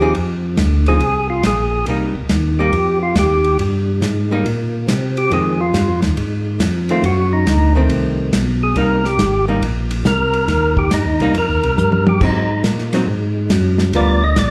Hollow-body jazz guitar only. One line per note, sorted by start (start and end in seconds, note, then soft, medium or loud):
0.01 0.14 F3 medium
0.01 0.14 C4 medium
0.01 0.14 D#4 medium
0.01 0.15 G#4 medium
0.88 1.01 F3 medium
0.88 1.01 C4 medium
0.88 1.01 D#4 medium
0.88 1.01 G#4 medium
1.88 2.13 G3 medium
1.88 2.14 A#3 medium
1.88 2.14 D#4 medium
2.59 2.72 G3 medium
2.59 2.73 A#3 medium
2.59 2.73 D#4 medium
4.31 4.44 G3 medium
4.31 4.45 A#3 medium
4.31 4.45 D#4 medium
5.32 5.57 D#3 medium
5.32 5.58 G#3 medium
5.32 5.58 C4 medium
6.90 7.03 D#3 medium
6.90 7.03 A3 medium
6.90 7.03 C4 medium
7.75 8.30 D#3 medium
7.75 8.31 A3 medium
7.75 8.31 C4 medium
8.77 9.02 G3 medium
8.77 9.03 A#3 medium
8.77 9.03 D#4 medium
9.48 9.61 G3 medium
9.48 9.62 A#3 medium
9.48 9.62 D#4 medium
11.21 11.34 G3 medium
11.21 11.34 A#3 medium
11.21 11.35 D#4 medium
12.21 12.47 F#3 medium
12.21 12.48 C4 medium
12.21 12.48 D#4 medium
12.94 13.07 F#3 medium
12.94 13.07 C4 medium
12.94 13.07 D#4 medium
13.95 14.20 G3 medium
13.95 14.20 B3 medium
13.95 14.21 F4 medium
13.95 14.21 A#4 medium